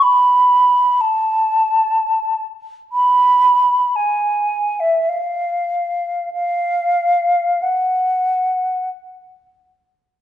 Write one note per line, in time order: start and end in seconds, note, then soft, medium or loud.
0.03 1.02 B5 medium
1.01 2.44 A5 medium
2.92 3.97 B5 medium
3.96 4.81 G#5 medium
4.80 5.10 E5 soft
5.09 6.33 F5 soft
6.33 7.63 F5 medium
7.62 8.89 F#5 soft